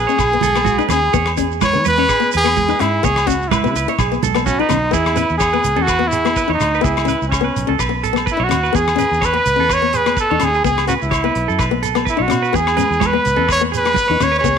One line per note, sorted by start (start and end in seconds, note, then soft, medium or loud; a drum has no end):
0.00 0.86 G#4 medium
0.07 0.27 C#4 medium
0.07 0.18 C#5 medium
0.07 shekere soft
0.16 0.38 B1 loud
0.16 0.41 G#4 medium
0.16 kick medium
0.16 cross-stick medium
0.16 muted conga soft
0.16 low agogo medium
0.16 shekere loud
0.33 0.51 B3 medium
0.33 shekere soft
0.41 0.80 B1 medium
0.41 0.64 A4 medium
0.41 closed hi-hat soft
0.41 muted conga soft
0.41 high conga medium
0.41 low conga medium
0.41 shekere medium
0.56 0.73 B3 medium
0.56 cross-stick medium
0.56 low agogo medium
0.65 0.78 F#4 medium
0.65 kick medium
0.65 high conga medium
0.65 shekere medium
0.78 0.87 D#4 medium
0.78 0.89 B4 medium
0.78 shekere soft
0.89 1.09 D#2 medium
0.89 1.08 C#4 medium
0.89 1.12 G#4 medium
0.89 1.32 G#4 medium
0.89 cross-stick medium
0.89 closed hi-hat medium
0.89 low conga medium
0.89 low agogo medium
0.89 shekere medium
1.13 1.76 E2 loud
1.13 1.32 B3 loud
1.13 1.36 C#5 medium
1.13 kick medium
1.13 muted conga soft
1.13 shekere loud
1.26 cross-stick medium
1.26 low agogo medium
1.26 shekere soft
1.37 1.55 C#4 medium
1.37 1.60 G#4 medium
1.37 kick medium
1.37 closed hi-hat medium
1.37 shekere medium
1.51 shekere soft
1.61 1.84 B4 medium
1.61 1.85 C#5 loud
1.61 kick medium
1.61 cross-stick medium
1.61 high conga loud
1.61 low agogo medium
1.61 shekere loud
1.73 1.83 E3 medium
1.73 1.92 B3 medium
1.73 shekere soft
1.85 2.05 E2 medium
1.85 1.97 B4 medium
1.85 2.31 B4 loud
1.85 closed hi-hat medium
1.85 muted conga soft
1.85 high conga medium
1.85 shekere medium
1.98 2.16 C#4 medium
1.98 2.09 C#5 medium
2.09 2.32 G#4 medium
2.09 kick medium
2.09 cross-stick medium
2.09 muted conga soft
2.09 low agogo medium
2.09 shekere loud
2.20 2.39 B3 medium
2.20 shekere soft
2.32 2.72 E2 medium
2.32 2.56 B4 medium
2.32 closed hi-hat medium
2.32 muted conga soft
2.32 shekere medium
2.37 2.82 G#4 loud
2.44 2.63 B3 medium
2.44 cross-stick medium
2.44 low agogo medium
2.56 2.69 G#4 medium
2.56 kick medium
2.56 high conga medium
2.56 shekere medium
2.68 2.77 D#4 medium
2.68 2.80 B4 medium
2.68 shekere soft
2.79 3.00 G#2 medium
2.79 2.97 C#4 medium
2.79 3.06 E4 medium
2.79 3.03 G#4 medium
2.79 cross-stick medium
2.79 closed hi-hat medium
2.79 low agogo medium
3.03 3.67 C#2 medium
3.03 3.21 B3 loud
3.03 3.29 G#4 loud
3.03 3.27 C#5 medium
3.03 kick loud
3.03 muted conga soft
3.03 shekere loud
3.16 cross-stick medium
3.16 low agogo medium
3.16 shekere soft
3.27 3.45 C#4 medium
3.27 3.50 F#4 medium
3.27 muted clean electric guitar stroke medium
3.27 kick medium
3.27 closed hi-hat soft
3.27 shekere medium
3.42 shekere soft
3.48 3.97 E4 medium
3.48 3.74 B4 medium
3.48 kick medium
3.48 cross-stick medium
3.48 high conga loud
3.52 low agogo medium
3.52 shekere medium
3.64 3.74 C#3 medium
3.64 3.82 B3 medium
3.64 shekere soft
3.75 3.86 C#2 medium
3.75 3.88 B4 medium
3.75 closed hi-hat medium
3.75 muted conga soft
3.75 shekere medium
3.88 3.99 C#5 medium
3.88 muted nylon-string guitar stroke medium
3.88 shekere soft
3.98 4.18 B1 loud
3.98 4.22 G#4 medium
3.98 kick medium
3.98 cross-stick medium
3.98 muted conga soft
3.98 low agogo medium
3.98 shekere loud
4.12 4.30 B3 medium
4.12 shekere soft
4.23 4.61 B1 medium
4.23 4.46 A4 medium
4.23 closed hi-hat soft
4.23 muted conga soft
4.23 high conga medium
4.23 low conga medium
4.23 shekere medium
4.35 4.53 B3 medium
4.35 cross-stick medium
4.35 low agogo medium
4.35 shekere soft
4.45 4.61 C#4 medium
4.45 4.59 F#4 medium
4.45 kick medium
4.45 high conga medium
4.45 shekere loud
4.59 4.94 D#4 medium
4.59 4.68 D#4 medium
4.59 4.70 B4 medium
4.69 4.90 B1 medium
4.69 4.87 C#4 medium
4.69 cross-stick medium
4.69 closed hi-hat medium
4.69 low conga medium
4.69 low agogo medium
4.69 shekere medium
4.91 5.23 E2 loud
4.91 5.10 B3 medium
4.91 5.37 E4 medium
4.91 5.16 G#4 medium
4.91 kick medium
4.91 shekere medium
5.06 cross-stick medium
5.06 low agogo medium
5.16 5.34 C#4 medium
5.16 5.40 B4 medium
5.16 closed hi-hat soft
5.16 shekere loud
5.29 5.58 E2 medium
5.29 shekere soft
5.38 5.84 G#4 loud
5.38 5.53 C#5 medium
5.38 kick medium
5.38 cross-stick medium
5.38 low agogo medium
5.38 shekere medium
5.53 5.72 B3 medium
5.53 5.76 B4 medium
5.64 5.75 C#2 medium
5.64 closed hi-hat medium
5.64 shekere medium
5.76 6.35 E2 medium
5.76 5.95 C#4 medium
5.76 5.88 A4 medium
5.83 6.09 F#4 loud
5.87 6.11 B4 medium
5.87 kick medium
5.87 cross-stick medium
5.87 low agogo medium
5.87 shekere medium
5.99 6.18 B3 medium
6.08 6.53 E4 medium
6.12 6.35 G#4 medium
6.12 closed hi-hat medium
6.12 shekere loud
6.25 6.43 B3 medium
6.25 cross-stick medium
6.25 low agogo medium
6.36 6.49 B4 medium
6.36 kick medium
6.36 shekere medium
6.48 6.58 E2 medium
6.48 6.57 D#4 medium
6.48 6.72 C#5 medium
6.54 6.84 D#4 medium
6.60 6.79 D2 medium
6.60 cross-stick medium
6.60 closed hi-hat soft
6.60 low agogo medium
6.60 shekere medium
6.74 6.84 B4 medium
6.74 shekere soft
6.81 7.14 C#2 loud
6.81 7.00 B3 medium
6.81 7.28 E4 medium
6.81 7.07 G#4 medium
6.81 kick medium
6.81 shekere medium
6.97 cross-stick medium
6.97 low agogo medium
7.05 7.24 C#4 medium
7.05 7.31 B4 medium
7.05 shekere medium
7.09 closed hi-hat soft
7.22 7.49 C#2 medium
7.22 shekere soft
7.28 7.74 C#4 medium
7.28 7.44 C#5 medium
7.28 kick medium
7.33 cross-stick medium
7.33 low agogo medium
7.33 shekere medium
7.41 7.60 B3 medium
7.41 7.67 B4 medium
7.56 7.66 B1 medium
7.56 closed hi-hat soft
7.56 shekere medium
7.67 7.78 C#2 medium
7.67 7.86 C#4 medium
7.67 7.79 A4 medium
7.79 8.28 B1 medium
7.79 8.02 B4 medium
7.79 kick medium
7.79 cross-stick medium
7.79 low agogo medium
7.79 shekere medium
7.89 8.08 B3 medium
8.03 8.26 A4 medium
8.03 closed hi-hat soft
8.03 shekere medium
8.13 8.32 B3 medium
8.13 cross-stick medium
8.18 low agogo medium
8.26 8.39 B4 medium
8.26 kick medium
8.26 shekere medium
8.32 8.45 E4 medium
8.37 8.48 B1 medium
8.37 8.46 D#4 medium
8.37 8.62 C#5 medium
8.44 8.77 F#4 medium
8.49 8.70 D#2 medium
8.49 8.67 C#4 medium
8.49 cross-stick medium
8.49 closed hi-hat soft
8.49 low agogo medium
8.49 shekere medium
8.63 8.74 B4 medium
8.63 shekere soft
8.73 9.04 E2 loud
8.73 8.91 B3 medium
8.73 8.97 G#4 medium
8.73 9.27 G#4 medium
8.73 kick medium
8.73 shekere medium
8.88 cross-stick medium
8.88 low agogo medium
8.96 9.15 C#4 medium
8.96 9.21 B4 medium
8.96 closed hi-hat soft
8.96 shekere medium
9.11 9.39 E2 medium
9.11 shekere soft
9.21 9.75 B4 loud
9.21 9.34 C#5 medium
9.21 kick medium
9.21 cross-stick medium
9.21 low agogo medium
9.21 shekere medium
9.33 9.58 B4 medium
9.33 muted nylon-string guitar stroke medium
9.46 9.56 C#2 medium
9.46 closed hi-hat medium
9.46 shekere medium
9.56 10.16 E2 medium
9.56 9.75 C#4 medium
9.56 9.70 A4 medium
9.69 9.93 B4 medium
9.69 9.98 C#5 loud
9.69 kick medium
9.69 cross-stick medium
9.69 low agogo medium
9.69 shekere medium
9.82 10.00 B3 medium
9.93 10.16 G#4 medium
9.93 10.19 B4 medium
9.93 closed hi-hat medium
9.93 shekere medium
10.06 10.24 B3 medium
10.06 cross-stick medium
10.06 low agogo medium
10.17 10.46 A4 loud
10.17 10.29 B4 medium
10.17 kick medium
10.17 shekere medium
10.30 10.39 E2 medium
10.30 10.39 D#4 medium
10.30 10.53 C#5 medium
10.40 10.60 D#2 medium
10.40 10.58 C#4 medium
10.40 cross-stick medium
10.40 closed hi-hat medium
10.40 low agogo medium
10.40 shekere medium
10.44 10.65 G#4 medium
10.54 10.63 G#4 medium
10.54 shekere soft
10.64 10.94 C#2 loud
10.64 10.82 B3 medium
10.64 10.87 G#4 medium
10.64 kick medium
10.64 shekere medium
10.78 cross-stick medium
10.78 low agogo medium
10.87 11.06 C#4 medium
10.87 10.94 F#4 medium
10.87 11.11 B4 medium
10.87 closed hi-hat soft
10.87 shekere medium
11.02 11.29 C#2 medium
11.02 11.69 E4 medium
11.02 shekere soft
11.11 11.24 C#5 medium
11.11 kick medium
11.11 cross-stick medium
11.11 low agogo medium
11.11 shekere medium
11.24 11.42 B3 medium
11.24 11.47 B4 medium
11.35 11.46 B1 medium
11.35 closed hi-hat soft
11.48 11.58 F#2 medium
11.48 11.59 A4 medium
11.48 shekere soft
11.59 12.08 B1 medium
11.59 11.82 B4 medium
11.59 kick medium
11.59 cross-stick medium
11.59 low agogo medium
11.59 shekere medium
11.71 11.89 B3 medium
11.83 12.05 A4 medium
11.83 closed hi-hat soft
11.83 shekere medium
11.95 12.13 B3 medium
11.95 cross-stick medium
11.95 low agogo medium
11.95 shekere soft
12.05 12.24 E4 medium
12.05 12.18 B4 medium
12.05 kick medium
12.05 shekere medium
12.17 12.28 B1 medium
12.17 12.26 D#4 medium
12.17 12.42 C#5 medium
12.22 12.58 F#4 medium
12.28 12.50 B2 medium
12.28 12.47 C#4 medium
12.28 cross-stick medium
12.28 closed hi-hat soft
12.28 low agogo medium
12.28 shekere medium
12.42 12.53 B4 medium
12.42 shekere soft
12.53 12.83 E2 loud
12.53 12.71 B3 medium
12.53 12.77 G#4 medium
12.53 13.08 G#4 medium
12.53 kick medium
12.53 muted conga soft
12.53 shekere medium
12.67 cross-stick medium
12.67 low agogo medium
12.77 12.95 C#4 medium
12.77 13.00 B4 medium
12.77 closed hi-hat soft
12.77 high conga medium
12.77 shekere medium
12.90 13.18 E2 medium
12.90 shekere soft
13.00 13.13 C#5 medium
13.00 kick medium
13.00 cross-stick medium
13.00 high conga medium
13.00 low agogo medium
13.00 shekere medium
13.06 13.51 B4 medium
13.13 13.32 B3 medium
13.13 13.37 B4 medium
13.25 13.36 C#2 medium
13.25 closed hi-hat medium
13.25 shekere medium
13.36 13.95 E2 medium
13.36 13.55 C#4 medium
13.36 13.48 A4 medium
13.48 13.71 B4 medium
13.48 kick medium
13.48 cross-stick medium
13.48 muted conga soft
13.48 low agogo medium
13.48 shekere medium
13.52 13.62 C#5 loud
13.61 13.79 B3 medium
13.72 13.95 G#4 medium
13.72 closed hi-hat medium
13.72 muted conga soft
13.72 shekere medium
13.77 14.25 B4 loud
13.85 14.03 B3 medium
13.85 cross-stick medium
13.85 low agogo medium
13.94 14.08 B4 medium
13.94 kick medium
13.94 high conga medium
13.94 shekere medium
14.08 14.18 E2 medium
14.08 14.19 D#4 medium
14.08 14.31 C#5 medium
14.20 14.39 D#2 medium
14.20 14.39 C#4 medium
14.20 14.35 C#5 medium
14.20 cross-stick medium
14.20 closed hi-hat soft
14.20 muted conga soft
14.20 low agogo medium
14.20 shekere medium
14.32 14.43 B4 medium
14.32 shekere soft
14.39 14.58 G#4 medium
14.39 14.58 C#5 medium
14.39 muted conga soft
14.44 14.58 C#2 loud
14.44 14.58 B3 medium
14.44 kick medium
14.44 shekere medium